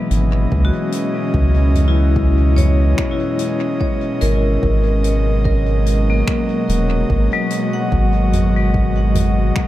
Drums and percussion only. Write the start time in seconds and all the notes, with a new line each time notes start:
0.11 closed hi-hat
0.52 kick
0.92 closed hi-hat
1.34 kick
1.74 closed hi-hat, mid tom
2.16 kick
2.57 closed hi-hat, mid tom
2.98 finger snap, kick
3.39 closed hi-hat
3.81 kick
4.21 closed hi-hat
4.63 kick
5.04 closed hi-hat
5.45 kick
5.86 closed hi-hat
6.28 finger snap, kick
6.69 closed hi-hat
7.10 kick
7.50 closed hi-hat
7.92 kick
8.33 closed hi-hat, mid tom
8.74 kick
9.15 closed hi-hat, mid tom
9.56 finger snap, kick